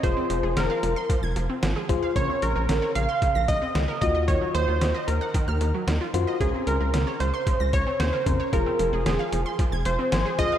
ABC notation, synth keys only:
X:1
M:4/4
L:1/8
Q:1/4=113
K:Bbm
V:1 name="Synth keys"
[FAc]3 z4 [FAc] | [DBc]3 z4 [FGe]- | [FGe]2 z4 z [FGc] | [DBc]3 z4 [DBc] |
[FAc]3 z3 a [FAcf] |]